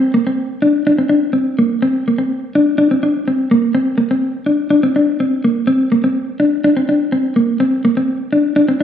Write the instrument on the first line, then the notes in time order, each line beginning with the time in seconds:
clean electric guitar
0.14 A#3
0.27 C4
0.62 D4
0.87 D4
0.98 C4
1.09 D4
1.33 C4
1.59 A#3
1.82 C4
2.08 A#3
2.18 C4
2.55 D4
2.78 D4
2.91 C4
3.03 D4
3.28 C4
3.51 A#3
3.75 C4
3.98 A#3
4.11 C4
4.46 D4
4.70 D4
4.83 C4
4.96 D4
5.20 C4
5.44 A#3
5.67 C4
5.92 A#3
6.04 C4
6.40 D4
6.64 D4
6.77 C4
6.89 D4
7.12 C4
7.36 A#3
7.60 C4
7.85 A#3
7.97 C4
8.33 D4
8.56 D4
8.68 C4